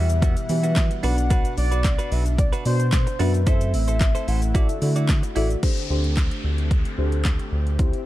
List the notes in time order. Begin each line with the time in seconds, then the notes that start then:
Already playing: E2 B2 E3 G3 E5 F#5
0.09 muted clean electric guitar stroke, closed hi-hat, shaker
0.22 G3 B3 F#4, kick, closed hi-hat, shaker
0.37 muted clean electric guitar stroke, closed hi-hat, shaker
0.49 E3 B3 E4 F#4 G4 B4, muted clean electric guitar stroke, open hi-hat, shaker
0.63 G3 B3 F#4, closed hi-hat, shaker
0.76 kick, snare, clap, closed hi-hat, shaker
0.91 muted clean electric guitar stroke, closed hi-hat, shaker
1.03 B1 B3 D4 F#4 B4 D5 F#5, open hi-hat, shaker
1.18 muted clean electric guitar stroke, closed hi-hat, shaker
1.30 D4 F#4 B4, kick, closed hi-hat, shaker
1.45 closed hi-hat, shaker
1.57 B1 D5, muted clean electric guitar stroke, open hi-hat, shaker
1.71 D4 F#4 B4, closed hi-hat, shaker
1.84 kick, snare, clap, closed hi-hat, shaker
1.98 D4 F#4 B4, closed hi-hat, shaker
2.11 B1 D4 F#4 B4 E5, open hi-hat, shaker
2.26 muted clean electric guitar stroke, closed hi-hat, shaker
2.38 D5, muted clean electric guitar stroke, kick, closed hi-hat, shaker
2.53 D4 F#4 B4, closed hi-hat, shaker
2.65 B2 D4 F#4 C5 D5, open hi-hat, shaker
2.80 muted clean electric guitar stroke, closed hi-hat, shaker
2.92 kick, snare, clap, closed hi-hat, shaker
3.07 muted clean electric guitar stroke, closed hi-hat, shaker
3.19 F#2 B3 D4 F#4 B4 E5, open hi-hat, shaker
3.34 muted clean electric guitar stroke, closed hi-hat, shaker
3.46 A3 C4 E4 A4 C5 E5, kick, closed hi-hat, shaker
3.61 closed hi-hat, shaker
3.74 A1 E5, muted clean electric guitar stroke, open hi-hat, shaker
3.88 E4 A4 C5, closed hi-hat, shaker
4.01 kick, snare, clap, closed hi-hat, shaker
4.15 E4 A4 C5, closed hi-hat, shaker
4.28 A1 E4 A4 C5 F#5, open hi-hat, shaker
4.42 muted clean electric guitar stroke, closed hi-hat, shaker
4.54 D3 E4 F#4 A4 D5 E5, kick, closed hi-hat, shaker
4.69 muted clean electric guitar stroke, closed hi-hat, shaker
4.82 D3 E4 F#4 A4 D5 E5, muted clean electric guitar stroke, open hi-hat, shaker
4.96 E4 F#4 D5, closed hi-hat, shaker
5.09 kick, snare, clap, closed hi-hat, shaker
5.23 muted clean electric guitar stroke, closed hi-hat, shaker
5.36 A1 E4 F#4 A4 D5 E5, open hi-hat, shaker
5.50 muted clean electric guitar stroke, closed hi-hat, shaker
5.63 D3 A3 C4 D4 G4 A4 C5, kick, closed hi-hat, crash, downlifter
5.77 closed hi-hat
5.90 D2 D4 G4 A4 C5
6.04 closed hi-hat
6.17 kick, snare, clap, closed hi-hat
6.31 closed hi-hat
6.44 D2
6.58 closed hi-hat
6.71 kick, closed hi-hat
6.85 closed hi-hat
6.98 D2 D4 G4 A4 C5
7.12 closed hi-hat
7.25 kick, snare, clap, closed hi-hat
7.39 closed hi-hat
7.52 D2
7.67 closed hi-hat
7.79 C4 E4 G4 C5, kick, closed hi-hat
7.93 closed hi-hat